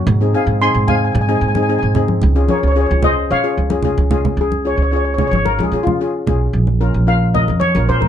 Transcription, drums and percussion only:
0.07 low conga medium
0.88 low conga medium
1.15 high conga medium
1.55 high conga medium
1.95 low conga medium
2.08 high conga medium
2.22 low conga medium
2.49 high conga medium
3.02 low conga medium
3.70 high conga medium
3.83 low conga medium
3.98 high conga medium
4.11 low conga medium
4.25 low conga medium
4.52 high conga medium
5.18 low conga medium
5.33 high conga medium
5.46 high conga medium
5.60 high conga medium
5.87 high conga medium
5.87 low conga medium
6.27 low conga medium
6.67 high conga medium
7.35 low conga medium
7.48 high conga medium
7.61 high conga medium
7.75 high conga medium
8.02 high conga medium
8.02 low conga medium

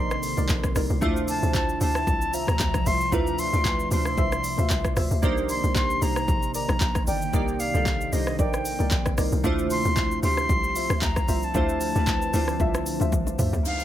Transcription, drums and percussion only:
0.11 cross-stick loud
0.11 shaker medium
0.23 open hi-hat medium
0.23 shaker loud
0.37 low bongo medium
0.37 shaker medium
0.49 kick medium
0.49 clap loud
0.49 high bongo medium
0.49 shaker medium
0.64 kick medium
0.64 cross-stick loud
0.64 low bongo medium
0.64 shaker medium
0.76 cross-stick loud
0.76 open hi-hat medium
0.76 shaker loud
0.90 shaker soft
1.02 kick loud
1.02 low conga medium
1.02 shaker medium
1.16 shaker medium
1.28 open hi-hat medium
1.28 shaker loud
1.43 shaker medium
1.54 kick loud
1.54 clap loud
1.54 high bongo medium
1.54 low conga medium
1.54 shaker medium
1.69 shaker medium
1.81 open hi-hat medium
1.81 shaker loud
1.95 cross-stick loud
1.95 shaker soft
2.07 kick loud
2.07 low conga medium
2.07 shaker medium
2.22 shaker medium
2.34 open hi-hat medium
2.34 shaker loud
2.47 cross-stick loud
2.47 low bongo medium
2.47 shaker medium
2.59 kick medium
2.59 clap loud
2.59 high bongo medium
2.59 shaker medium
2.74 kick loud
2.74 cross-stick loud
2.74 low bongo medium
2.74 shaker medium
2.86 open hi-hat medium
2.86 shaker loud
3.01 shaker medium
3.12 kick loud
3.12 low conga medium
3.12 shaker medium
3.27 shaker medium
3.39 open hi-hat medium
3.39 shaker loud
3.53 shaker medium
3.64 kick medium
3.64 clap medium
3.64 high bongo medium
3.64 low conga medium
3.64 shaker medium
3.80 shaker soft
3.90 open hi-hat medium
3.90 low bongo medium
3.90 shaker medium
4.05 cross-stick medium
4.05 shaker medium
4.18 kick loud
4.18 low conga medium
4.18 shaker medium
4.32 cross-stick medium
4.32 shaker medium
4.44 open hi-hat medium
4.44 shaker loud
4.58 low bongo medium
4.58 shaker medium
4.70 kick medium
4.70 clap loud
4.70 high bongo medium
4.70 shaker medium
4.85 kick medium
4.85 cross-stick loud
4.85 low bongo medium
4.85 shaker medium
4.97 cross-stick loud
4.97 open hi-hat medium
4.97 shaker loud
5.11 shaker medium
5.23 kick loud
5.23 low conga medium
5.23 shaker medium
5.37 shaker medium
5.49 open hi-hat medium
5.49 shaker loud
5.64 shaker medium
5.75 kick loud
5.75 clap medium
5.75 high bongo medium
5.75 low conga medium
5.75 shaker medium
5.90 shaker soft
6.02 open hi-hat medium
6.02 shaker loud
6.16 cross-stick medium
6.16 shaker medium
6.28 kick loud
6.28 low conga medium
6.28 shaker medium
6.43 shaker medium
6.54 open hi-hat medium
6.54 shaker loud
6.68 cross-stick loud
6.68 low bongo medium
6.68 shaker medium
6.81 kick medium
6.81 clap loud
6.81 high bongo medium
6.81 shaker medium
6.95 kick loud
6.95 cross-stick loud
6.95 low bongo medium
6.95 shaker medium
7.07 open hi-hat medium
7.07 shaker loud
7.22 shaker medium
7.33 kick loud
7.33 low conga medium
7.33 shaker medium
7.48 shaker medium
7.60 open hi-hat medium
7.60 shaker loud
7.75 shaker medium
7.85 kick medium
7.85 clap loud
7.85 high bongo medium
7.85 low conga medium
7.85 shaker medium
8.01 shaker soft
8.13 open hi-hat medium
8.13 shaker loud
8.27 cross-stick medium
8.27 shaker medium
8.39 kick loud
8.39 low conga medium
8.39 shaker medium
8.53 cross-stick medium
8.53 shaker medium
8.65 open hi-hat medium
8.65 shaker loud
8.79 low bongo medium
8.79 shaker medium
8.91 kick medium
8.91 clap loud
8.91 high bongo medium
8.91 shaker medium
9.06 kick loud
9.06 cross-stick loud
9.06 low bongo medium
9.06 shaker medium
9.18 cross-stick loud
9.18 open hi-hat medium
9.18 shaker loud
9.32 shaker soft
9.44 kick loud
9.44 low conga medium
9.44 shaker medium
9.59 shaker medium
9.70 open hi-hat medium
9.70 shaker loud
9.85 shaker soft
9.96 kick loud
9.96 clap loud
9.96 high bongo medium
9.96 low conga medium
9.96 shaker medium
10.11 shaker soft
10.23 open hi-hat medium
10.23 shaker loud
10.37 cross-stick medium
10.37 shaker medium
10.49 kick loud
10.49 low conga medium
10.49 shaker medium
10.64 shaker medium
10.76 open hi-hat medium
10.76 shaker loud
10.90 cross-stick loud
10.90 low bongo medium
10.90 shaker medium
11.02 kick medium
11.02 clap loud
11.02 high bongo medium
11.02 shaker medium
11.16 kick loud
11.16 cross-stick loud
11.16 low bongo medium
11.16 shaker medium
11.28 open hi-hat medium
11.28 shaker loud
11.43 shaker soft
11.54 kick loud
11.54 low conga medium
11.54 shaker medium
11.69 shaker medium
11.81 open hi-hat medium
11.81 shaker loud
11.95 shaker medium
12.06 kick medium
12.06 clap loud
12.06 high bongo medium
12.06 low conga medium
12.06 shaker medium
12.22 shaker soft
12.34 open hi-hat medium
12.34 shaker loud
12.48 cross-stick medium
12.48 shaker medium
12.60 kick loud
12.60 low conga medium
12.60 shaker medium
12.74 cross-stick loud
12.74 shaker medium
12.86 open hi-hat medium
12.86 shaker loud
13.00 low bongo medium
13.00 shaker medium
13.12 kick medium
13.12 high tom medium
13.12 high bongo medium
13.12 shaker medium
13.27 low bongo medium
13.27 shaker medium
13.39 mid tom loud
13.39 open hi-hat medium
13.39 shaker loud
13.53 floor tom loud
13.53 shaker medium
13.65 shaker medium
13.80 shaker soft

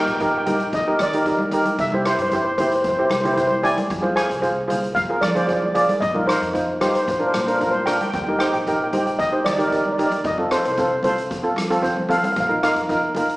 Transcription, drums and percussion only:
0.07 closed hi-hat medium
0.20 kick loud
0.20 closed hi-hat medium
0.46 closed hi-hat medium
0.46 high conga medium
0.46 low conga medium
0.60 closed hi-hat medium
0.73 kick loud
0.73 closed hi-hat medium
0.99 cross-stick medium
0.99 closed hi-hat medium
0.99 high conga medium
1.13 closed hi-hat medium
1.13 low conga medium
1.26 kick medium
1.26 closed hi-hat medium
1.39 high conga medium
1.51 closed hi-hat medium
1.51 low conga medium
1.65 closed hi-hat medium
1.65 high conga medium
1.79 kick loud
1.79 closed hi-hat medium
1.92 high conga medium
2.06 cross-stick medium
2.06 closed hi-hat medium
2.19 closed hi-hat medium
2.31 kick medium
2.31 closed hi-hat medium
2.58 closed hi-hat medium
2.58 high conga medium
2.58 low conga medium
2.72 closed hi-hat medium
2.84 kick loud
2.84 closed hi-hat medium
3.10 cross-stick medium
3.10 closed hi-hat medium
3.10 high conga medium
3.23 closed hi-hat medium
3.23 low conga medium
3.37 kick medium
3.37 closed hi-hat medium
3.51 high conga medium
3.64 closed hi-hat medium
3.64 low conga medium
3.78 closed hi-hat medium
3.78 high conga medium
3.90 kick loud
3.90 closed hi-hat medium
4.04 high conga medium
4.17 cross-stick medium
4.17 closed hi-hat medium
4.31 closed hi-hat medium
4.43 kick medium
4.43 closed hi-hat medium
4.70 closed hi-hat medium
4.70 high conga medium
4.70 low conga medium
4.84 closed hi-hat medium
4.96 kick loud
4.96 closed hi-hat medium
5.22 cross-stick medium
5.22 closed hi-hat medium
5.22 high conga medium
5.35 closed hi-hat medium
5.35 low conga medium
5.49 kick medium
5.49 closed hi-hat medium
5.62 high conga medium
5.75 closed hi-hat medium
5.75 low conga medium
5.89 closed hi-hat medium
5.89 high conga medium
6.02 kick loud
6.02 closed hi-hat medium
6.16 high conga medium
6.29 cross-stick medium
6.29 closed hi-hat loud
6.42 closed hi-hat medium
6.55 kick loud
6.55 closed hi-hat medium
6.81 cross-stick medium
6.81 closed hi-hat medium
6.81 high conga medium
6.81 low conga medium
6.95 closed hi-hat medium
7.08 kick loud
7.08 closed hi-hat medium
7.34 cross-stick medium
7.34 closed hi-hat medium
7.34 high conga medium
7.48 closed hi-hat medium
7.61 kick medium
7.61 closed hi-hat medium
7.75 high conga medium
7.87 cross-stick medium
7.87 closed hi-hat medium
7.87 low conga medium
8.01 closed hi-hat medium
8.01 high conga medium
8.13 kick loud
8.13 closed hi-hat medium
8.27 high conga medium
8.40 cross-stick loud
8.40 closed hi-hat medium
8.54 closed hi-hat medium
8.67 kick medium
8.67 closed hi-hat medium
8.93 closed hi-hat medium
8.93 high conga medium
8.93 low conga medium
9.07 closed hi-hat medium
9.19 kick loud
9.19 closed hi-hat medium
9.45 cross-stick medium
9.45 closed hi-hat medium
9.45 high conga medium
9.59 closed hi-hat medium
9.59 low conga medium
9.72 kick medium
9.72 closed hi-hat medium
9.85 high conga medium
9.98 closed hi-hat medium
9.98 low conga medium
10.12 closed hi-hat medium
10.12 high conga medium
10.24 kick loud
10.24 closed hi-hat medium
10.38 high conga medium
10.51 cross-stick medium
10.51 closed hi-hat medium
10.65 closed hi-hat medium
10.78 kick medium
10.78 closed hi-hat medium
11.03 closed hi-hat medium
11.03 high conga medium
11.03 low conga medium
11.18 closed hi-hat medium
11.31 kick loud
11.31 closed hi-hat medium
11.57 cross-stick medium
11.57 closed hi-hat medium
11.57 high conga medium
11.70 closed hi-hat medium
11.70 low conga medium
11.84 kick medium
11.84 closed hi-hat medium
11.97 high conga medium
12.09 closed hi-hat medium
12.09 low conga medium
12.23 closed hi-hat medium
12.23 high conga medium
12.36 kick loud
12.36 closed hi-hat medium
12.63 cross-stick medium
12.63 closed hi-hat medium
12.76 closed hi-hat medium
12.89 kick medium
12.89 closed hi-hat medium
13.15 closed hi-hat medium
13.15 high conga medium
13.15 low conga medium
13.29 closed hi-hat medium

